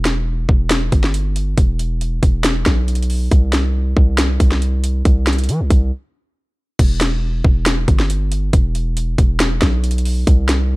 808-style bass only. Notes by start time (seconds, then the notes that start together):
Already playing: E1
0.49 E1
0.92 G1
1.58 E1
2.23 E1
2.66 B1
3.31 C2
3.97 C2
4.40 C2
5.05 C2
5.49 E3
5.60 C2
5.70 C2
6.79 E1
7.44 E1
7.88 G1
8.53 E1
9.18 E1
9.62 B1
10.27 C2